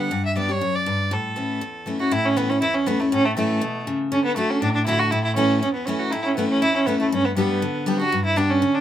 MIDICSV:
0, 0, Header, 1, 3, 480
1, 0, Start_track
1, 0, Tempo, 250209
1, 219, Time_signature, 4, 2, 24, 8
1, 16893, End_track
2, 0, Start_track
2, 0, Title_t, "Fiddle"
2, 0, Program_c, 0, 110
2, 0, Note_on_c, 0, 78, 86
2, 474, Note_off_c, 0, 78, 0
2, 482, Note_on_c, 0, 76, 86
2, 689, Note_off_c, 0, 76, 0
2, 715, Note_on_c, 0, 74, 90
2, 973, Note_on_c, 0, 73, 104
2, 1002, Note_off_c, 0, 74, 0
2, 1446, Note_on_c, 0, 74, 94
2, 1474, Note_off_c, 0, 73, 0
2, 2167, Note_on_c, 0, 69, 80
2, 2196, Note_off_c, 0, 74, 0
2, 3594, Note_off_c, 0, 69, 0
2, 3838, Note_on_c, 0, 66, 93
2, 4063, Note_on_c, 0, 64, 109
2, 4092, Note_off_c, 0, 66, 0
2, 4317, Note_on_c, 0, 61, 107
2, 4346, Note_off_c, 0, 64, 0
2, 4547, Note_on_c, 0, 59, 100
2, 4576, Note_off_c, 0, 61, 0
2, 4785, Note_on_c, 0, 61, 102
2, 4814, Note_off_c, 0, 59, 0
2, 4995, Note_off_c, 0, 61, 0
2, 5007, Note_on_c, 0, 64, 105
2, 5258, Note_on_c, 0, 61, 89
2, 5287, Note_off_c, 0, 64, 0
2, 5499, Note_on_c, 0, 59, 97
2, 5528, Note_off_c, 0, 61, 0
2, 5751, Note_on_c, 0, 57, 75
2, 5779, Note_off_c, 0, 59, 0
2, 5969, Note_off_c, 0, 57, 0
2, 5980, Note_on_c, 0, 61, 108
2, 6227, Note_on_c, 0, 57, 96
2, 6256, Note_off_c, 0, 61, 0
2, 6440, Note_off_c, 0, 57, 0
2, 6452, Note_on_c, 0, 57, 85
2, 7592, Note_off_c, 0, 57, 0
2, 7896, Note_on_c, 0, 61, 98
2, 8133, Note_off_c, 0, 61, 0
2, 8146, Note_on_c, 0, 59, 97
2, 8363, Note_off_c, 0, 59, 0
2, 8373, Note_on_c, 0, 57, 95
2, 8630, Note_on_c, 0, 61, 102
2, 8659, Note_off_c, 0, 57, 0
2, 8836, Note_off_c, 0, 61, 0
2, 8847, Note_on_c, 0, 62, 107
2, 9080, Note_off_c, 0, 62, 0
2, 9091, Note_on_c, 0, 62, 86
2, 9309, Note_off_c, 0, 62, 0
2, 9321, Note_on_c, 0, 64, 96
2, 9573, Note_on_c, 0, 66, 87
2, 9602, Note_off_c, 0, 64, 0
2, 9794, Note_on_c, 0, 64, 105
2, 9823, Note_off_c, 0, 66, 0
2, 10035, Note_off_c, 0, 64, 0
2, 10046, Note_on_c, 0, 64, 92
2, 10262, Note_off_c, 0, 64, 0
2, 10273, Note_on_c, 0, 61, 104
2, 10733, Note_off_c, 0, 61, 0
2, 10746, Note_on_c, 0, 61, 103
2, 10990, Note_off_c, 0, 61, 0
2, 11001, Note_on_c, 0, 59, 87
2, 11228, Note_on_c, 0, 61, 91
2, 11257, Note_off_c, 0, 59, 0
2, 11483, Note_on_c, 0, 66, 93
2, 11512, Note_off_c, 0, 61, 0
2, 11694, Note_on_c, 0, 63, 74
2, 11723, Note_off_c, 0, 66, 0
2, 11728, Note_on_c, 0, 64, 103
2, 11757, Note_off_c, 0, 63, 0
2, 11974, Note_off_c, 0, 64, 0
2, 11986, Note_on_c, 0, 61, 96
2, 12195, Note_off_c, 0, 61, 0
2, 12206, Note_on_c, 0, 59, 85
2, 12438, Note_off_c, 0, 59, 0
2, 12450, Note_on_c, 0, 61, 96
2, 12681, Note_on_c, 0, 64, 106
2, 12709, Note_off_c, 0, 61, 0
2, 12942, Note_on_c, 0, 61, 92
2, 12971, Note_off_c, 0, 64, 0
2, 13168, Note_on_c, 0, 59, 91
2, 13196, Note_off_c, 0, 61, 0
2, 13418, Note_off_c, 0, 59, 0
2, 13430, Note_on_c, 0, 57, 76
2, 13643, Note_off_c, 0, 57, 0
2, 13658, Note_on_c, 0, 61, 100
2, 13908, Note_on_c, 0, 59, 87
2, 13936, Note_off_c, 0, 61, 0
2, 14115, Note_off_c, 0, 59, 0
2, 14127, Note_on_c, 0, 59, 91
2, 15266, Note_off_c, 0, 59, 0
2, 15326, Note_on_c, 0, 66, 97
2, 15783, Note_off_c, 0, 66, 0
2, 15825, Note_on_c, 0, 64, 102
2, 16055, Note_on_c, 0, 62, 97
2, 16084, Note_off_c, 0, 64, 0
2, 16293, Note_on_c, 0, 61, 100
2, 16322, Note_off_c, 0, 62, 0
2, 16776, Note_on_c, 0, 62, 100
2, 16805, Note_off_c, 0, 61, 0
2, 16893, Note_off_c, 0, 62, 0
2, 16893, End_track
3, 0, Start_track
3, 0, Title_t, "Steel-string acoustic guitar"
3, 0, Program_c, 1, 25
3, 0, Note_on_c, 1, 59, 66
3, 0, Note_on_c, 1, 62, 60
3, 0, Note_on_c, 1, 67, 67
3, 196, Note_off_c, 1, 59, 0
3, 203, Note_off_c, 1, 62, 0
3, 208, Note_off_c, 1, 67, 0
3, 210, Note_on_c, 1, 43, 94
3, 683, Note_on_c, 1, 55, 62
3, 699, Note_on_c, 1, 59, 62
3, 706, Note_on_c, 1, 62, 62
3, 717, Note_on_c, 1, 67, 61
3, 913, Note_off_c, 1, 67, 0
3, 932, Note_off_c, 1, 55, 0
3, 936, Note_on_c, 1, 67, 62
3, 940, Note_off_c, 1, 59, 0
3, 943, Note_off_c, 1, 62, 0
3, 970, Note_on_c, 1, 62, 44
3, 1129, Note_off_c, 1, 43, 0
3, 1163, Note_off_c, 1, 67, 0
3, 1177, Note_on_c, 1, 42, 78
3, 1180, Note_off_c, 1, 62, 0
3, 1635, Note_off_c, 1, 42, 0
3, 1655, Note_on_c, 1, 43, 87
3, 2115, Note_off_c, 1, 43, 0
3, 2134, Note_on_c, 1, 45, 96
3, 2606, Note_on_c, 1, 52, 61
3, 2616, Note_on_c, 1, 57, 63
3, 2626, Note_on_c, 1, 61, 64
3, 2637, Note_on_c, 1, 64, 68
3, 3052, Note_off_c, 1, 45, 0
3, 3070, Note_off_c, 1, 52, 0
3, 3076, Note_off_c, 1, 57, 0
3, 3080, Note_off_c, 1, 61, 0
3, 3086, Note_off_c, 1, 64, 0
3, 3095, Note_on_c, 1, 40, 83
3, 3564, Note_on_c, 1, 52, 57
3, 3581, Note_on_c, 1, 57, 60
3, 3593, Note_on_c, 1, 61, 72
3, 3604, Note_on_c, 1, 64, 73
3, 3801, Note_off_c, 1, 64, 0
3, 3814, Note_off_c, 1, 52, 0
3, 3822, Note_off_c, 1, 57, 0
3, 3824, Note_on_c, 1, 64, 58
3, 3828, Note_off_c, 1, 61, 0
3, 3860, Note_on_c, 1, 61, 48
3, 4013, Note_off_c, 1, 40, 0
3, 4048, Note_off_c, 1, 64, 0
3, 4056, Note_on_c, 1, 45, 95
3, 4066, Note_off_c, 1, 61, 0
3, 4538, Note_on_c, 1, 52, 82
3, 4552, Note_on_c, 1, 57, 93
3, 4560, Note_on_c, 1, 61, 83
3, 4568, Note_on_c, 1, 64, 86
3, 4766, Note_off_c, 1, 64, 0
3, 4781, Note_off_c, 1, 52, 0
3, 4789, Note_off_c, 1, 57, 0
3, 4789, Note_on_c, 1, 64, 56
3, 4792, Note_off_c, 1, 61, 0
3, 4825, Note_on_c, 1, 61, 53
3, 4974, Note_off_c, 1, 45, 0
3, 5011, Note_off_c, 1, 64, 0
3, 5024, Note_on_c, 1, 40, 92
3, 5029, Note_off_c, 1, 61, 0
3, 5493, Note_on_c, 1, 52, 80
3, 5504, Note_on_c, 1, 57, 86
3, 5516, Note_on_c, 1, 61, 93
3, 5526, Note_on_c, 1, 64, 97
3, 5724, Note_off_c, 1, 64, 0
3, 5739, Note_off_c, 1, 52, 0
3, 5745, Note_off_c, 1, 57, 0
3, 5747, Note_on_c, 1, 64, 61
3, 5751, Note_off_c, 1, 61, 0
3, 5784, Note_on_c, 1, 61, 55
3, 5938, Note_off_c, 1, 40, 0
3, 5970, Note_off_c, 1, 64, 0
3, 5987, Note_on_c, 1, 45, 92
3, 5988, Note_off_c, 1, 61, 0
3, 6458, Note_on_c, 1, 52, 87
3, 6475, Note_on_c, 1, 57, 91
3, 6484, Note_on_c, 1, 61, 81
3, 6493, Note_on_c, 1, 64, 98
3, 6900, Note_off_c, 1, 45, 0
3, 6918, Note_off_c, 1, 52, 0
3, 6926, Note_off_c, 1, 57, 0
3, 6931, Note_off_c, 1, 61, 0
3, 6933, Note_on_c, 1, 47, 93
3, 6935, Note_off_c, 1, 64, 0
3, 7396, Note_off_c, 1, 47, 0
3, 7426, Note_on_c, 1, 49, 82
3, 7882, Note_off_c, 1, 49, 0
3, 7899, Note_on_c, 1, 50, 90
3, 8340, Note_off_c, 1, 50, 0
3, 8363, Note_on_c, 1, 50, 84
3, 8380, Note_on_c, 1, 57, 86
3, 8391, Note_on_c, 1, 62, 94
3, 8400, Note_on_c, 1, 66, 100
3, 8830, Note_off_c, 1, 50, 0
3, 8839, Note_off_c, 1, 57, 0
3, 8844, Note_off_c, 1, 62, 0
3, 8849, Note_off_c, 1, 66, 0
3, 8862, Note_on_c, 1, 45, 90
3, 9334, Note_on_c, 1, 50, 89
3, 9350, Note_on_c, 1, 57, 98
3, 9363, Note_on_c, 1, 62, 89
3, 9370, Note_on_c, 1, 66, 109
3, 9777, Note_off_c, 1, 45, 0
3, 9796, Note_off_c, 1, 50, 0
3, 9804, Note_off_c, 1, 57, 0
3, 9810, Note_off_c, 1, 62, 0
3, 9814, Note_off_c, 1, 66, 0
3, 9825, Note_on_c, 1, 45, 93
3, 10291, Note_on_c, 1, 52, 91
3, 10303, Note_on_c, 1, 57, 97
3, 10313, Note_on_c, 1, 61, 104
3, 10325, Note_on_c, 1, 64, 96
3, 10738, Note_off_c, 1, 45, 0
3, 10754, Note_off_c, 1, 52, 0
3, 10760, Note_off_c, 1, 57, 0
3, 10765, Note_off_c, 1, 61, 0
3, 10771, Note_off_c, 1, 64, 0
3, 10793, Note_on_c, 1, 40, 85
3, 11257, Note_on_c, 1, 52, 95
3, 11275, Note_on_c, 1, 57, 82
3, 11287, Note_on_c, 1, 61, 98
3, 11295, Note_on_c, 1, 64, 84
3, 11701, Note_off_c, 1, 40, 0
3, 11717, Note_off_c, 1, 52, 0
3, 11725, Note_off_c, 1, 57, 0
3, 11731, Note_off_c, 1, 61, 0
3, 11736, Note_off_c, 1, 64, 0
3, 11750, Note_on_c, 1, 45, 101
3, 12218, Note_on_c, 1, 52, 80
3, 12235, Note_on_c, 1, 57, 97
3, 12249, Note_on_c, 1, 61, 93
3, 12254, Note_on_c, 1, 64, 95
3, 12659, Note_off_c, 1, 45, 0
3, 12677, Note_off_c, 1, 52, 0
3, 12685, Note_off_c, 1, 57, 0
3, 12692, Note_off_c, 1, 61, 0
3, 12694, Note_off_c, 1, 64, 0
3, 12700, Note_on_c, 1, 40, 91
3, 13173, Note_on_c, 1, 52, 77
3, 13186, Note_on_c, 1, 57, 82
3, 13200, Note_on_c, 1, 61, 98
3, 13206, Note_on_c, 1, 64, 90
3, 13400, Note_off_c, 1, 64, 0
3, 13418, Note_off_c, 1, 52, 0
3, 13423, Note_on_c, 1, 64, 65
3, 13425, Note_off_c, 1, 57, 0
3, 13431, Note_off_c, 1, 61, 0
3, 13461, Note_on_c, 1, 61, 47
3, 13614, Note_off_c, 1, 40, 0
3, 13647, Note_off_c, 1, 64, 0
3, 13666, Note_off_c, 1, 61, 0
3, 13667, Note_on_c, 1, 43, 95
3, 14130, Note_on_c, 1, 55, 93
3, 14142, Note_on_c, 1, 59, 84
3, 14152, Note_on_c, 1, 62, 92
3, 14164, Note_on_c, 1, 67, 100
3, 14577, Note_off_c, 1, 43, 0
3, 14591, Note_off_c, 1, 55, 0
3, 14597, Note_off_c, 1, 59, 0
3, 14602, Note_off_c, 1, 62, 0
3, 14609, Note_off_c, 1, 67, 0
3, 14622, Note_on_c, 1, 50, 84
3, 15082, Note_on_c, 1, 55, 93
3, 15094, Note_on_c, 1, 59, 96
3, 15107, Note_on_c, 1, 62, 93
3, 15115, Note_on_c, 1, 67, 101
3, 15314, Note_off_c, 1, 67, 0
3, 15331, Note_off_c, 1, 55, 0
3, 15337, Note_off_c, 1, 59, 0
3, 15337, Note_on_c, 1, 67, 59
3, 15344, Note_off_c, 1, 62, 0
3, 15373, Note_on_c, 1, 62, 57
3, 15534, Note_off_c, 1, 50, 0
3, 15563, Note_off_c, 1, 67, 0
3, 15581, Note_off_c, 1, 62, 0
3, 15584, Note_on_c, 1, 43, 93
3, 16043, Note_on_c, 1, 55, 84
3, 16060, Note_on_c, 1, 59, 83
3, 16068, Note_on_c, 1, 62, 94
3, 16078, Note_on_c, 1, 67, 101
3, 16494, Note_off_c, 1, 43, 0
3, 16507, Note_off_c, 1, 55, 0
3, 16515, Note_off_c, 1, 59, 0
3, 16520, Note_off_c, 1, 62, 0
3, 16524, Note_off_c, 1, 67, 0
3, 16535, Note_on_c, 1, 50, 78
3, 16893, Note_off_c, 1, 50, 0
3, 16893, End_track
0, 0, End_of_file